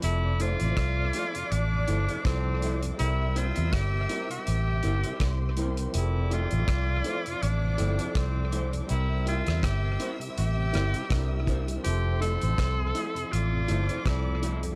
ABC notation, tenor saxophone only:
X:1
M:4/4
L:1/16
Q:"Swing 16ths" 1/4=81
K:F
V:1 name="Tenor saxophone"
E2 F6 D4 C3 z | E2 F2 G3 G6- G z2 | E2 F6 D4 C3 z | E2 F2 G3 z G6 z2 |
G2 A6 F4 E3 z |]